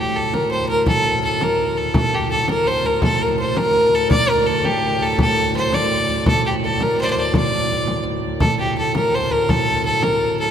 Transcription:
0.00 4.11 D2 medium
0.00 4.10 A2 medium
0.00 0.17 G4 medium
0.16 0.35 A4 medium
0.34 0.50 A#4 medium
0.34 frame drum medium
0.51 0.68 C5 medium
0.69 0.86 A#4 medium
0.69 frame drum soft
0.87 1.21 A4 medium
0.87 frame drum medium
1.24 1.45 A4 medium
1.41 1.79 A#4 medium
1.41 frame drum medium
1.76 1.95 A4 medium
1.76 frame drum soft
1.94 2.15 A4 medium
1.94 frame drum medium
2.14 2.30 G4 medium
2.31 2.48 A4 medium
2.48 2.68 A#4 medium
2.48 frame drum medium
2.67 2.87 C5 medium
2.85 3.03 A#4 medium
2.85 frame drum soft
3.02 3.23 A4 medium
3.02 frame drum medium
3.20 3.39 A#4 medium
3.20 frame drum soft
3.39 3.58 C5 medium
3.39 frame drum soft
3.57 3.96 A#4 medium
3.57 frame drum medium
3.94 4.10 A4 medium
4.11 8.40 D2 medium
4.11 8.41 A2 medium
4.11 4.31 D5 loud
4.11 frame drum medium
4.29 4.48 A#4 medium
4.46 4.66 A4 medium
4.65 5.04 G4 medium
4.65 frame drum medium
5.01 5.19 A4 medium
5.01 frame drum soft
5.18 5.53 A4 medium
5.18 frame drum medium
5.56 5.76 C5 medium
5.73 6.27 D5 medium
5.73 frame drum medium
6.09 frame drum soft
6.26 6.44 A4 medium
6.26 frame drum medium
6.46 6.54 G4 medium
6.64 6.84 A4 medium
6.80 6.99 A#4 medium
6.80 frame drum medium
7.01 7.05 C5 medium
7.01 7.12 D5 medium
7.10 7.20 C5 medium
7.17 7.35 D5 medium
7.17 frame drum soft
7.34 8.03 D5 medium
7.34 frame drum medium
7.70 frame drum soft
7.87 frame drum soft
8.05 frame drum soft
8.40 10.51 D2 medium
8.40 10.51 A2 medium
8.40 8.58 A4 medium
8.40 frame drum medium
8.59 8.76 G4 medium
8.78 8.94 A4 medium
8.95 9.16 A#4 medium
8.95 frame drum medium
9.15 9.33 C5 medium
9.31 9.51 A#4 medium
9.31 frame drum soft
9.49 9.84 A4 medium
9.49 frame drum medium
9.85 10.04 A4 medium
10.02 10.38 A#4 medium
10.02 frame drum medium
10.38 10.51 A4 medium
10.38 frame drum soft

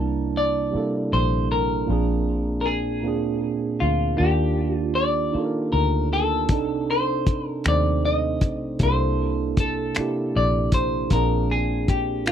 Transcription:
0.00 0.70 C2 medium
0.00 0.33 C3 medium
0.00 0.33 G3 medium
0.00 0.34 A#3 medium
0.00 0.34 D4 medium
0.00 0.38 E4 medium
0.00 0.31 A#4 medium
0.00 0.35 A5 medium
0.37 1.13 D5 medium
0.71 1.48 C3 medium
0.71 1.49 G3 medium
0.71 1.49 A#3 medium
0.71 1.50 D4 soft
0.71 muted fingered electric bass stroke soft
0.76 1.50 E4 soft
0.76 1.51 A4 medium
1.13 1.85 A#1 medium
1.13 1.48 C5 medium
1.52 2.60 A#4 medium
1.87 3.04 A#1 medium
1.87 2.63 A#2 medium
1.87 2.64 A#3 medium
1.87 2.65 C4 medium
1.87 2.65 D4 medium
1.92 2.66 G#4 medium
2.61 2.67 A#4 medium
2.66 3.80 G#4 medium
3.02 3.77 D2 medium
3.02 3.79 A#2 medium
3.02 3.79 A#3 medium
3.02 3.80 C4 medium
3.06 3.81 D4 medium
3.06 3.82 G#4 medium
3.80 4.16 D2 medium
3.80 4.18 F4 medium
4.17 5.31 D#2 medium
4.17 4.94 D#3 medium
4.17 4.95 A#3 medium
4.17 4.95 D4 medium
4.17 4.76 G4 medium
4.21 4.96 F4 medium
4.21 4.97 G4 medium
4.76 4.98 F4 medium
4.95 5.72 D5 medium
5.32 6.10 A#3 medium
5.32 6.11 D4 medium
5.32 6.09 D#4 medium
5.32 muted fingered electric bass stroke soft
5.37 6.12 F4 medium
5.37 5.43 A4 soft
5.45 6.16 A#4 medium
5.72 6.50 D2 medium
5.72 6.08 A#4 medium
6.13 6.90 A4 medium
6.48 7.61 C2 loud
6.48 7.25 C3 medium
6.48 7.26 C4 medium
6.48 7.27 D4 medium
6.48 kick medium
6.48 closed hi-hat medium
6.52 7.27 D#4 medium
6.52 7.28 A4 medium
6.91 7.48 C5 medium
7.27 kick medium
7.27 closed hi-hat medium
7.48 7.68 A#4 medium
7.64 8.42 D#2 medium
7.64 8.41 C3 medium
7.64 8.42 A3 medium
7.64 8.41 C4 medium
7.64 finger snap loud
7.64 closed hi-hat medium
7.68 8.43 D#4 medium
7.68 8.43 C5 medium
7.68 8.05 D5 medium
8.05 8.83 D#5 medium
8.41 8.77 B1 medium
8.41 kick medium
8.41 closed hi-hat medium
8.79 9.92 C2 medium
8.79 9.56 C3 medium
8.79 9.56 A#3 medium
8.79 9.57 D4 medium
8.79 kick medium
8.79 closed hi-hat medium
8.83 9.58 E4 medium
8.83 8.89 G#4 medium
8.83 9.61 C5 medium
8.91 9.62 A4 medium
9.57 10.38 A4 medium
9.57 kick medium
9.57 closed hi-hat medium
9.95 10.71 C3 medium
9.95 10.72 A#3 medium
9.95 10.73 D4 medium
9.95 finger snap loud
9.95 muted fingered electric bass stroke soft
9.95 closed hi-hat medium
9.99 10.74 E4 medium
9.99 10.74 G4 medium
10.36 11.08 A#1 medium
10.36 10.74 D5 medium
10.72 11.12 C5 medium
10.72 kick medium
10.72 closed hi-hat medium
11.10 12.29 A#1 medium
11.10 11.86 A#2 medium
11.10 11.87 A#3 medium
11.10 11.88 C4 medium
11.10 11.48 A#4 medium
11.10 kick medium
11.10 closed hi-hat medium
11.14 11.89 D4 medium
11.14 11.89 G#4 medium
11.51 11.86 G#4 medium
11.88 12.27 G4 medium
11.88 kick medium
11.88 closed hi-hat medium
12.24 12.32 A#2 medium
12.24 12.32 A#3 medium
12.24 12.32 C4 medium
12.24 12.32 D4 medium
12.24 12.32 F4 medium
12.24 finger snap loud
12.24 closed hi-hat medium
12.29 12.32 D2 medium

